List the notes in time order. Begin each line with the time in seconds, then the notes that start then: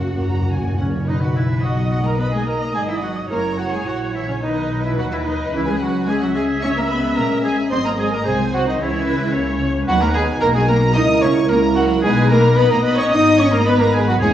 Already playing: F#1 A#3 C#4 F#4 F#5
0.03 F#2
0.11 F#2
0.18 F#2 A#5
0.27 F#2
0.34 F#2
0.42 F#2
0.49 F#2 G#5
0.57 F#2
0.65 F#2
0.72 F#2
0.79 F#2 C#3 C#4 C#5 F#5
0.87 F#2
0.96 F#2
1.07 B1 B2 D#3 F#3 D#4 B4 D#5
1.21 F#3 F#4 F#5
1.35 E3 E4 E5
1.63 F#3 D#4 F#4 D#5 F#5
1.90 F#3 F#4 F#5
1.94 F#4
2.03 A#3 A#4 A#5
2.08 A#4
2.18 F#3 B3 D#4 B4 D#5 B5
2.22 B4
2.31 G#3 G#4 G#5
2.35 G#5
2.45 A#3 A#4 A#5
2.49 A#4
2.73 G#1 G#3 G#4 G#5
2.87 E3 E4 E5
2.91 E4
3.01 F#3 F#4 F#5
3.30 F#1 F#3 A#3 E4 A#4 C#5 A#5
3.58 F#3 F#4 F#5
3.72 G#3 G#4 G#5
3.84 A#1 F#3 E4 F#4 F#5
4.13 E3 E4 E5
4.27 C#3 C#4 C#5
4.40 B1 D#3 F#3 D#4 B4 D#5
4.84 E3 E4 E5
4.98 D#2 F#3 F#4 F#5
5.11 E3 E4 E5
5.24 D#3 D#4 D#5
5.50 C#2 E3 G#3 C#4 E4 E5
5.55 E4
5.65 G#3 G#4 G#5
5.71 G#4
5.80 F#3 F#4 F#5
6.06 G#3 C#4 G#4 E5 G#5
6.11 G#4
6.21 F#3 F#4 F#5
6.34 G#3 G#4 G#5
6.61 G#3 C#4 C#5 C#6
6.76 A#3 A#4 A#5
6.88 B3 B4 B5
7.15 A#1 A#3 A#4 A#5
7.44 G#3 G#4 G#5
7.70 G#1 F#3 C4 C5 D#5 C6
7.84 A#3 A#4 A#5
7.96 G#3 G#4 G#5
8.11 A#3 A#4 A#5
8.25 C2 F#3 G#3 C4 G#4 C5 G#5
8.53 F#3 F#4 F#5
8.66 D#3 D#4 D#5
8.79 C#2 E3 G#3 C#4 E4 C#5 E5
9.07 B4
9.34 A#3 C#5
9.87 D#2 F#3 B3 D#4 F#4 B4 F#5
10.00 A#3 A#4 A#5
10.14 G#3 G#4 G#5
10.41 B1 A#3 F#4 A#4 A#5
10.54 G#3 G#4 G#5
10.67 A#3 A#4 A#5
10.94 C#2 A#3 D#4 E4 A#4 D#5 D#6
11.21 C#4 C#5 C#6
11.48 A#3 E4 A#4 A#5
11.75 F#3 F#4 F#5
12.02 B1 G#3 B3 D#4 G#4 B4 G#5
12.29 A#3 A#4 A#5
12.55 A#1 B3 D#4 B4 D#5 B5
12.60 B4
12.69 A#3 A#4 A#5
12.82 B3 B4 B5
12.95 C#4 C#5 C#6
13.00 C#5
13.11 G#1 B3 D#4 D#5 D#6
13.38 C#4 C#5 C#6
13.52 A#3 A#4 A#5
13.66 B3 D#4 B4 B5
13.79 A#3 A#4 A#5
13.94 G#3 G#4 G#5
14.07 F#3 F#4 F#5
14.19 E2 G#3 C#4 G#4 C#5 G#5
14.23 E4 G#4